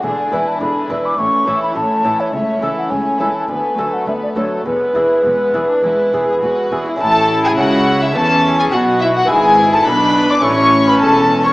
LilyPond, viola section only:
\new Staff \with { instrumentName = "Viola section" } { \clef bass \time 4/4 \key a \major \tempo 4 = 104 d8 e8 d8 e8 a8 e8 a8 e8 | a8 e8 a8 e8 a8 fis8 a8 fis8 | gis8 e8 gis8 e8 gis8 e8 gis8 e8 | e'2 cis'4 fis'4 |
e'4 d'4 cis'2 | }